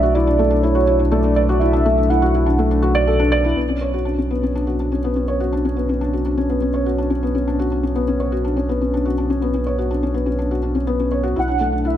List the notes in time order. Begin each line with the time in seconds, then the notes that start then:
Already playing: B1 A3 D4 E4 F#4 D5 E5
0.03 F#4
0.14 E4 D5
0.27 D4
0.39 A3
0.50 D4
0.62 E4 C#5
0.75 F#4
0.87 E4
0.99 D4
1.11 A3 D5
1.24 D4
1.36 D5
1.49 F#4
1.59 E4 E5
1.73 D4
1.86 A3
1.98 D4
2.10 E4 F#5
2.22 F#4
2.35 E4
2.46 D4
2.59 A3
2.71 D4
2.82 F#4
2.95 D5
3.07 A4
3.19 D4
3.32 D5
3.44 E4
3.55 B1 B3
3.69 C#4
3.81 C#5
3.94 F#4
4.05 D4
4.18 C#4
4.31 B3
4.43 C#4
4.55 D4
4.67 F#4
4.80 D4
4.92 C#4
5.04 B3
5.16 C#4
5.28 C#5
5.40 F#4
5.52 D4
5.65 C#4
5.76 B3
5.89 C#4
6.01 D4
6.13 F#4
6.25 D4
6.37 C#4
6.50 B3
6.62 C#4
6.74 C#5
6.86 F#4
6.98 D4
7.10 C#4
7.23 B3
7.35 C#4
7.47 D4
7.59 F#4
7.72 D4
7.83 C#4
7.95 B3
8.08 C#4
8.20 C#5
8.32 F#4
8.45 D4
8.57 C#4
8.69 B3
8.81 C#4
8.94 D4
9.05 F#4
9.18 D4
9.30 C#4
9.42 B3
9.54 C#4
9.66 C#5
9.78 F#4
9.91 D4
10.03 C#4
10.14 B3
10.26 C#4
10.39 D4
10.51 F#4
10.63 D4
10.75 C#4
10.87 B3
11.00 C#4
11.11 C#5
11.23 F#4
11.36 B1 E4 F#5
11.48 D4
11.60 A3
11.72 D4
11.85 E4 E5